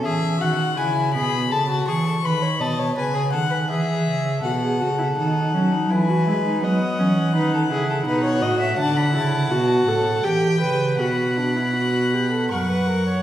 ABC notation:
X:1
M:3/4
L:1/16
Q:1/4=82
K:Bdor
V:1 name="Violin"
e2 f2 g2 b2 a2 c'2 | b2 a2 g2 f2 e4 | f4 f4 g4 | f8 f4 |
[K:F#phr] a b a a4- a g4 | b8 c'4 |]
V:2 name="Violin"
G2 F2 E2 G2 A F G A | B c ^d c B G A B G4 | A8 B4 | ^d4 B A G A B c d e |
[K:F#phr] f8 g4 | f8 f4 |]
V:3 name="Viola"
z12 | z12 | F G F E ^D2 C D E F E D | B,2 C2 ^D2 E2 D2 F2 |
[K:F#phr] D2 E2 F2 A2 G2 B2 | F2 D E F2 G A ^A B A c |]
V:4 name="Cello" clef=bass
E,2 ^D,2 C,2 B,,2 C,2 E,2 | ^D,2 B,,2 C,2 D,2 E,2 C,2 | B,,2 C,2 ^D,2 F,2 E,2 G,2 | F,2 E,2 ^D,2 C,2 B,,2 A,,2 |
[K:F#phr] D,2 C,2 B,,2 A,,2 E,2 C,2 | B,,8 F,,4 |]